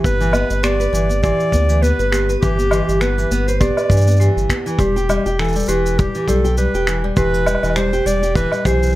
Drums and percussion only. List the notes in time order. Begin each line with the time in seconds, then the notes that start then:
0.04 kick, cabasa
0.21 cabasa
0.33 cabasa, low woodblock
0.50 cabasa
0.64 finger snap, cabasa
0.81 cabasa
0.95 cabasa
1.10 cabasa
1.24 kick, cabasa
1.40 cabasa
1.52 kick, cabasa
1.69 cabasa
1.84 cabasa
2.00 cabasa
2.12 finger snap, cabasa
2.29 cabasa
2.43 kick, cabasa
2.59 cabasa
2.71 cabasa, low woodblock
2.89 cabasa
3.01 finger snap, cabasa
3.19 cabasa
3.31 cabasa
3.48 cabasa
3.61 kick, cabasa
3.77 cabasa, low woodblock
3.90 kick, cabasa
3.97 cabasa
4.01 cabasa
4.07 cabasa
4.11 cabasa
4.16 cabasa
4.21 cabasa
4.38 cabasa
4.50 finger snap, kick, cabasa
4.67 cabasa
4.79 kick, cabasa
4.97 cabasa
5.10 cabasa, low woodblock
5.26 cabasa
5.39 finger snap, cabasa
5.44 cabasa
5.48 cabasa
5.52 cabasa
5.56 cabasa
5.60 cabasa
5.63 cabasa
5.66 cabasa
5.68 cabasa
5.86 cabasa
5.99 kick, cabasa
6.15 cabasa
6.28 kick, cabasa
6.45 cabasa
6.57 cabasa
6.75 cabasa
6.87 finger snap, cabasa
7.17 kick, cabasa
7.34 cabasa
7.46 cabasa, low woodblock
7.55 low woodblock
7.63 cabasa, low woodblock
7.69 low woodblock
7.76 finger snap, cabasa
7.93 cabasa
8.07 cabasa
8.23 cabasa
8.35 kick, cabasa
8.52 cabasa, low woodblock
8.65 kick, cabasa
8.83 cabasa
8.86 cabasa
8.89 cabasa
8.92 cabasa